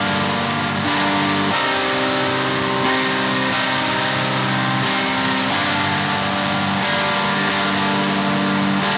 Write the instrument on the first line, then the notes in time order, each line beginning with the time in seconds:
distorted electric guitar
Already playing: G2 D3 G3 A#3 D4
0.85 G2 D3 G3 A#3
0.89 D4
1.51 C3 G3 C4 D#4
2.84 C3 G3 C4
2.88 D#4
3.50 C3 G3 C4 D#4
4.83 C3 G3 C4
4.87 D#4
5.50 G2 D3 G3 A#3 D4
6.81 G2 D3 G3 A#3
6.85 D4
7.48 G2 D3 G3 A#3 D4
8.80 G2 D3 G3 A#3 D4